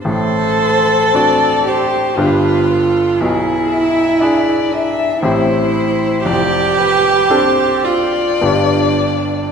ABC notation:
X:1
M:3/4
L:1/8
Q:1/4=58
K:Ddor
V:1 name="Violin"
c2 d c B A | ^G e d e c2 | d B c d3 |]
V:2 name="Cello"
A3 G F2 | E3 D E2 | G3 F D2 |]
V:3 name="Grand piano"
[A,,,A,,]2 [CD^F]2 [G,,,G,,B,DG]2 | [B,,,B,,]2 [DE^G]2 [A,,,A,,CE=G]2 | [F,,,F,,]2 [CDA]2 [G,,,G,,B,FG]2 |]